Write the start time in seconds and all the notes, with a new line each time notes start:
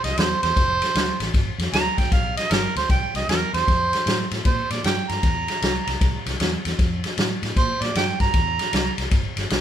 0.04 C2 D#5, snare, ride
0.17 E2 C5, snare, ride
0.43 E2 C5, snare, ride
0.57 F1, kick, snare, ride
0.82 snare, ride
0.95 D2, snare, ride
1.20 A1, snare, ride
1.34 G1, kick, snare, ride
1.58 F2, snare, ride
1.73 D2 A#5, snare, ride
1.98 D2 G5, kick, snare, ride
2.12 B1 F5, kick, snare, ride
2.37 D#5, snare, ride
2.51 G1 A#4, snare, ride
2.76 D2 C5, snare, ride
2.90 C2 G5, kick, snare, ride
3.14 C2 D#5, snare, ride
3.28 E2 A#4, snare, ride
3.53 E2 C5, snare, ride
3.68 F2, kick, snare, ride
3.93 snare, ride
4.06 A2, snare, ride
4.31 A2, snare, ride
4.45 A#2 C5, kick, snare, ride
4.70 A#2 D5, snare, ride
4.84 G2 G5, snare, ride
5.09 G2 A#5, snare, ride
5.23 E2, kick, snare, ride
5.48 snare, ride
5.62 C2, snare, ride
5.87 C2, snare, ride
6.01 C2, kick, snare, ride
6.26 C2, snare, ride
6.40 E2, snare, ride
6.65 E2, snare, ride
6.79 F2, kick, snare, ride
7.04 snare, ride
7.17 A2, snare, ride
7.42 A2, snare, ride
7.57 A#2 C5, kick, snare, ride
7.81 A#2 D5, snare, ride
7.95 G2 G5, snare, ride
8.20 G2 A#5, kick, snare, ride
8.34 E2, kick, snare, ride
8.59 snare, ride
8.73 C2, snare, ride
8.98 C2, snare, ride
9.11 G1, kick, snare, ride
9.37 G1, snare, ride
9.50 B1, snare, ride